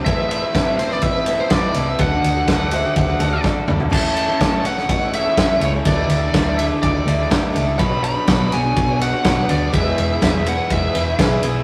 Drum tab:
CC |----------------|----------------|x---------------|----------------|
RD |x-x-x-x-x-x-x-x-|x-x-x-x-x-x-----|--x-x-x-x-x-x-x-|x-x-x-x-x-x-x-x-|
SD |----o--o----o---|----o-------o---|----o--o----o---|----o-------o---|
T2 |----------------|--------------o-|----------------|----------------|
FT |----------------|---------------o|----------------|----------------|
BD |o---o---o---o---|o---o---o---o---|o---o---o---o---|o---o---o---o---|

CC |----------------|----------------|
RD |x-x-x-x-x-x-x-x-|x-x-x-x-x-x-x-x-|
SD |----o-------o---|----o-------o---|
T2 |----------------|----------------|
FT |----------------|----------------|
BD |o---o---o---o---|o---o---o---o---|